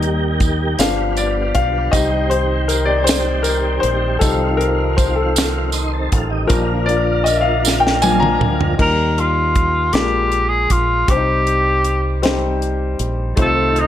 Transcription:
Already playing: fingered electric bass D#2, tonewheel organ D#3 G3 A#3 G4, grand piano G3 A#3 D#4
0.03 closed hi-hat
0.40 kick, closed hi-hat, tambourine
0.79 fingered electric bass G1, tonewheel organ D3 G3 G#3 F4, grand piano F3 B3 D4 F5, snare, closed hi-hat, tambourine
0.86 tonewheel organ B3
1.17 grand piano D5, closed hi-hat, tambourine
1.55 fingered electric bass B1, grand piano F5, kick, closed hi-hat
1.92 fingered electric bass C2, tonewheel organ D#3 G3 C4 G4, grand piano G3 C4 D#4 D#5, kick, closed hi-hat, tambourine
2.30 grand piano C5, closed hi-hat
2.68 grand piano A#4, closed hi-hat, tambourine
2.85 grand piano D5
3.04 grand piano C5, closed hi-hat, tambourine
3.09 snare
3.43 grand piano A#4, closed hi-hat, tambourine
3.80 fingered electric bass A#1, grand piano C5, closed hi-hat
4.19 fingered electric bass C2, tonewheel organ D#3 G#3 C4 F4, grand piano G3 C4 D#4 A4, kick, closed hi-hat, tambourine
4.27 tonewheel organ F3
4.57 grand piano A#4, closed hi-hat
4.97 grand piano C5, kick, closed hi-hat, tambourine
5.16 grand piano A4
5.36 snare, closed hi-hat, tambourine
5.72 tonewheel organ D#4 C5, closed hi-hat, tambourine
5.93 tonewheel organ C4 A4
6.12 fingered electric bass A1, tonewheel organ A3 F4, kick, closed hi-hat
6.30 tonewheel organ G3 D#4
6.47 fingered electric bass A#1, tonewheel organ D3 F3 A#3 F4, grand piano F3 A#3 D4 A#4, kick, closed hi-hat, tambourine
6.86 grand piano D5, closed hi-hat
7.24 grand piano D#5, closed hi-hat, tambourine
7.37 grand piano E5
7.41 grand piano F5
7.65 snare, tambourine
7.80 grand piano G5
7.87 snare
8.02 grand piano F3 A#3 D4 G#5, high tom, tambourine
8.20 grand piano A#5, mid tom
8.41 fingered electric bass D2, mid tom
8.61 floor tom
8.77 fingered electric bass D#2, grand piano D#3 F3 A#3 D#4 A#4, kick, crash
8.82 grand piano G3, tenor saxophone A#4
9.18 tenor saxophone F4, closed hi-hat
9.55 kick, closed hi-hat
9.93 fingered electric bass A#1, grand piano A#2 G#3 D4 F4 A#4, tenor saxophone G4, snare, closed hi-hat
10.32 closed hi-hat
10.49 tenor saxophone G#4
10.70 fingered electric bass A#1, tenor saxophone F4, kick, closed hi-hat
11.08 fingered electric bass C2, grand piano C3 G3 C4 D4 C5, tenor saxophone G4, kick, closed hi-hat
11.17 grand piano D#4
11.47 closed hi-hat
11.84 closed hi-hat
12.22 grand piano G3 C4 D#4 C5, snare, closed hi-hat
12.62 closed hi-hat
12.99 fingered electric bass A#1, closed hi-hat
13.35 fingered electric bass C2, grand piano C3 A3 D#4 F4 C5, tonewheel organ D#3 A3 C4 F4, kick, closed hi-hat
13.42 tenor saxophone A4
13.76 tenor saxophone D#4, closed hi-hat

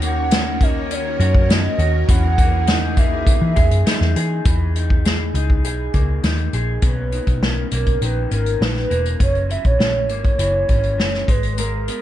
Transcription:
Already playing: picked electric bass D#2, string machine D#3 C#4 F#4 A#4 C#5, clean electric guitar D#3 C#4 F#4
0.02 clean electric guitar A#3, soft synth lead F#5, closed hi-hat
0.31 clean electric guitar C#4, snare, closed hi-hat
0.61 clean electric guitar A#3, soft synth lead D#5, kick, closed hi-hat
0.91 clean electric guitar C#4, soft synth lead C#5, closed hi-hat
1.20 picked electric bass F#2, clean electric guitar F#4, closed hi-hat
1.35 kick
1.49 clean electric guitar C#4, soft synth lead D#5, snare, closed hi-hat
1.78 picked electric bass D#2, clean electric guitar F#4, closed hi-hat
2.09 picked electric bass E2, clean electric guitar E3, string machine E3 G#4, soft synth lead F#5, kick, closed hi-hat
2.38 clean electric guitar A#3, kick, closed hi-hat
2.67 clean electric guitar D#4, snare, closed hi-hat
2.97 clean electric guitar A#3, soft synth lead E5, kick, closed hi-hat
3.27 kick, closed hi-hat
3.41 picked electric bass E3
3.56 picked electric bass E2, clean electric guitar G#4, kick, closed hi-hat
3.71 picked electric bass F#2, closed hi-hat
3.86 clean electric guitar D#4, muted picked electric bass stroke, snare, closed hi-hat
4.01 picked electric bass E2, snare
4.16 picked electric bass E3, clean electric guitar G#4, closed hi-hat
4.45 picked electric bass E2, clean electric guitar E3, kick, closed hi-hat
4.76 clean electric guitar D#4, closed hi-hat
4.90 kick
5.05 clean electric guitar G#4, snare, closed hi-hat
5.34 picked electric bass C#2, clean electric guitar D#4, closed hi-hat
5.50 kick
5.64 picked electric bass B1, clean electric guitar G#4, closed hi-hat
5.94 picked electric bass C#2, clean electric guitar A#3, kick, closed hi-hat
6.24 picked electric bass D#2, clean electric guitar D#4, snare, closed hi-hat
6.37 closed hi-hat
6.53 picked electric bass A#1, clean electric guitar G#4, closed hi-hat
6.82 picked electric bass B1, clean electric guitar B2 C#4, soft synth lead B4, kick, closed hi-hat
7.12 clean electric guitar D#3, closed hi-hat
7.27 picked electric bass B1, kick, closed hi-hat
7.42 clean electric guitar C#4, soft synth lead A#4, snare
7.71 picked electric bass B1, clean electric guitar A#3, soft synth lead A#4, closed hi-hat
7.86 kick, closed hi-hat
8.01 picked electric bass A#1, clean electric guitar D#3, soft synth lead B4, closed hi-hat
8.31 picked electric bass G#1, clean electric guitar C#4, soft synth lead A#4, closed hi-hat
8.46 closed hi-hat
8.61 picked electric bass A#1, clean electric guitar D#3, soft synth lead B4, snare
8.75 snare, closed hi-hat
8.90 picked electric bass E1, clean electric guitar A#3, closed hi-hat
9.05 closed hi-hat
9.19 picked electric bass F#1, clean electric guitar F#2 C#4, soft synth lead C#5, kick, closed hi-hat
9.35 closed hi-hat
9.49 clean electric guitar E3, soft synth lead E5, closed hi-hat
9.65 picked electric bass A#1, soft synth lead C#5, kick, closed hi-hat
9.79 picked electric bass A#1, clean electric guitar C#4, snare
10.09 picked electric bass G#1, clean electric guitar A#3, closed hi-hat
10.24 kick, closed hi-hat
10.39 picked electric bass F#1, clean electric guitar E3, closed hi-hat
10.69 picked electric bass G#1, clean electric guitar C#4, kick, closed hi-hat
10.83 closed hi-hat
10.98 picked electric bass F#1, clean electric guitar E3, snare
11.14 snare
11.28 picked electric bass G#1, clean electric guitar G#3, soft synth lead B4, kick, closed hi-hat
11.43 closed hi-hat
11.53 soft synth lead B4
11.58 clean electric guitar G#3 A#4, soft synth lead A#4, closed hi-hat
11.88 clean electric guitar B3, closed hi-hat

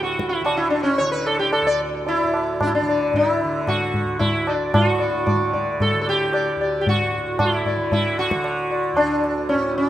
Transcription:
Already playing: tanpura D2 A2 D3
0.03 sitar F#4, tabla te
0.19 tabla ke
0.29 sitar E4, tabla te
0.40 tanpura D3
0.44 sitar F#4, tabla na
0.57 sitar E4 F#4
0.70 sitar D4
0.82 sitar C#4 D4
0.98 tanpura D3, sitar C#5, tabla tin
1.12 sitar B4
1.26 sitar A4, tabla na
1.39 sitar G4
1.53 sitar A4, tabla na
1.61 tanpura D2
1.67 sitar D5
2.07 sitar E4 D5, tabla tin
2.23 tanpura A2
2.34 sitar D5, tabla na
2.61 sitar D4 D5, tabla na, tabla ge
2.67 sitar E4
2.75 sitar D4
2.81 tanpura D3
2.89 sitar D5
3.14 sitar E4 D5, tabla tin, tabla ge
3.44 tanpura D3
3.67 sitar F#4, tabla na, tabla ge
3.94 tabla ge
4.03 tanpura D2
4.19 sitar E4, tabla tin, tabla ge
4.47 sitar D5, tabla na
4.55 sitar D4
4.73 tanpura A2, sitar F#4, tabla na, tabla ge
4.99 sitar D5
5.26 sitar D5, tabla na, tabla ge
5.34 tanpura D3
5.54 sitar D5, tabla ge
5.80 sitar A4, tabla tin, tabla ge
5.94 tanpura D3
6.02 sitar A4
6.07 sitar G4, tabla na
6.33 sitar D5, tabla na
6.55 tanpura D2
6.61 sitar D5
6.81 sitar G4
6.87 sitar F#4, tabla tin, tabla ge
7.16 tanpura A2
7.39 sitar F4, tabla na, tabla ge
7.55 sitar E4
7.66 sitar D5, tabla ge
7.76 tanpura D3
7.92 sitar E4, tabla tin, tabla ge
8.18 sitar F#4, tabla na
8.31 tanpura D3, tabla ke
8.44 tabla na
8.71 sitar D5
8.93 tanpura D2
8.97 sitar D4, tabla na
9.24 tabla na
9.49 sitar C#4, tabla tin
9.54 tanpura A2
9.78 sitar D4

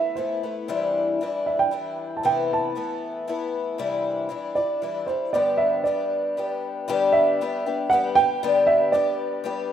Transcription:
Already playing: twelve-string acoustic guitar A3 B3 E4, grand piano E5
0.15 twelve-string acoustic guitar E3 A3 B3 E4, grand piano C5
0.43 twelve-string acoustic guitar A3 B3 E4
0.68 twelve-string acoustic guitar C3 E3 G3 D4 E4
1.21 twelve-string acoustic guitar E3 G3 D4 E4
1.46 grand piano E5
1.59 grand piano G5
1.71 twelve-string acoustic guitar E3 G3 D4 E4
2.17 grand piano A5
2.23 twelve-string acoustic guitar C3 E3 A3 B3 E4, grand piano G5
2.53 grand piano A5
2.75 twelve-string acoustic guitar E3 A3 B3 E4
3.28 twelve-string acoustic guitar E3 A3 B3 E4
3.78 twelve-string acoustic guitar C3 E3 G3 D4 E4
4.29 twelve-string acoustic guitar E3 G3 D4 E4
4.55 twelve-string acoustic guitar G3 D4 E4, grand piano D5
4.82 twelve-string acoustic guitar E3 G3 D4 E4
5.07 twelve-string acoustic guitar G3 D4 E4, grand piano C5
5.33 twelve-string acoustic guitar G2 D3 G3 B3 D4 G4, grand piano D5
5.57 grand piano E5
5.84 twelve-string acoustic guitar G3 B3 D4 G4, grand piano D5
6.37 twelve-string acoustic guitar G3 B3 D4 G4
6.88 twelve-string acoustic guitar G2 D3 G3 B3 D4 G4
7.12 grand piano E5
7.41 twelve-string acoustic guitar G3 B3 D4 G4
7.66 twelve-string acoustic guitar G3 B3 D4 G4
7.90 twelve-string acoustic guitar G3 B3 D4, grand piano F#5
7.94 twelve-string acoustic guitar G4
8.15 twelve-string acoustic guitar G3 B3 D4 G4, grand piano G5
8.43 twelve-string acoustic guitar G2 D3 G3 B3 D4 G4
8.67 grand piano E5
8.92 twelve-string acoustic guitar G3 B3 D4 G4, grand piano D5
9.44 twelve-string acoustic guitar G3 B3 D4 G4

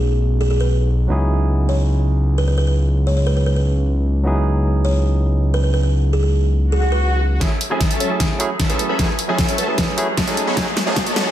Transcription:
Already playing: analog synth bass B1, tine electric piano F#3 A3 C#4 D#4 G#4
0.41 kalimba G#4
0.50 kalimba G#4
0.61 kalimba B4
1.08 analog synth bass C#2, tine electric piano F#3 B3 D#4 E4
1.12 tine electric piano G#4
1.69 kalimba C#5
2.38 kalimba B4
2.48 kalimba B4
2.58 kalimba B4
2.67 kalimba B4
3.07 kalimba C#5
3.17 kalimba C#5
3.27 kalimba B4
3.37 kalimba B4
3.46 kalimba B4
3.56 kalimba B4
4.23 tine electric piano F#3 B3 D#4 E4
4.27 tine electric piano G#4
4.85 kalimba C#5
5.54 kalimba B4
5.64 kalimba B4
5.74 kalimba B4
5.83 kalimba B4
6.13 kalimba G#4
6.23 kalimba G#4
6.62 swell
6.72 kalimba G#4
6.82 kalimba G#4
6.92 kalimba B4
7.40 tine electric piano F#3 A3 C#4 E4 G#4, supersaw synth F#3 C#4 A4 E5 G#5, kick, snare, closed hi-hat, riser
7.61 closed hi-hat
7.70 tine electric piano F#3 A3 C#4 E4 G#4, supersaw synth F#3 C#4 A4 E5 A5
7.81 kick, snare, closed hi-hat
7.91 closed hi-hat
8.00 supersaw synth F#3 C#4 A4 E5 A5, kalimba C#5, closed hi-hat
8.09 tine electric piano F#3 A3 C#4 E4 G#4
8.20 kick, snare, closed hi-hat
8.39 tine electric piano F#3 A3 C#4 E4 G#4, closed hi-hat
8.60 supersaw synth F#3 C#4 A4 E5 A5, kick, snare, closed hi-hat
8.69 tine electric piano F#3 A3 C#4 E4 G#4, supersaw synth F#3 C#4 A4 E5 A5, kalimba B4, closed hi-hat
8.79 kalimba B4, closed hi-hat
8.89 supersaw synth F#3 C#4 A4 E5 B5, kalimba B4
8.98 tine electric piano F#3 A3 C#4 E4 G#4, supersaw synth F#3 A4 E5, kalimba B4, kick, snare, closed hi-hat
9.19 closed hi-hat
9.28 tine electric piano F#3 A3 C#4 E4 G#4, supersaw synth F#3 C#4 A4 E5 A5
9.38 kalimba C#5, kick, snare, closed hi-hat
9.48 kalimba C#5, closed hi-hat
9.58 supersaw synth F#3 C#4 A4 E5 A5, kalimba B4, closed hi-hat
9.67 tine electric piano F#3 A3 C#4 E4 G#4, kalimba B4
9.78 kalimba B4, kick, snare, closed hi-hat
9.88 kalimba B4
9.97 tine electric piano F#3 A3 C#4 E4 G#4, closed hi-hat
10.17 supersaw synth F#3 C#4 A4 E5 A5, kick, snare, closed hi-hat
10.26 tine electric piano F#3 A3 C#4 D#4 G#4, supersaw synth F#3 C#4 A4 E5 A5, closed hi-hat
10.37 closed hi-hat
10.47 supersaw synth B3 F#4 A4 C#5 D#5 B5
10.56 tine electric piano F#3 A3 C#4 D#4 G#4, supersaw synth B3 A4 C#5 G#5, kick, snare, closed hi-hat
10.77 snare, closed hi-hat
10.86 tine electric piano F#3 A3 C#4 D#4 G#4, supersaw synth B3 F#4 A4 C#5 D#5 A5
10.96 kick, snare, closed hi-hat
11.06 closed hi-hat
11.16 supersaw synth B3 F#4 A4 C#5 D#5 A5, kalimba C#5, snare, closed hi-hat
11.25 tine electric piano F#3 A3 C#4 D#4 G#4

